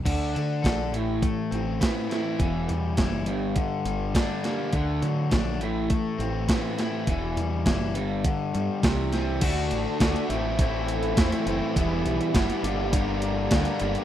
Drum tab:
CC |x---------------|----------------|----------------|----------------|
HH |x-x-x-x-x-x-x-x-|x-x-x-x-x-x-x-x-|x-x-x-x-x-x-x-x-|x-x-x-x-x-x-x-x-|
SD |----o-------o-o-|----o-------o-o-|----o-------o-o-|----o-------o-o-|
BD |o---o---o---o---|o---o---o---o---|o---o---o---o---|o---o---o---o---|

CC |x---------------|----------------|
HH |x-x-xxx-x-xxxxx-|x-xxxxx-x-x-xxxx|
SD |----o-------o---|----o-------o---|
BD |o---o---o---o---|o---o---o---o---|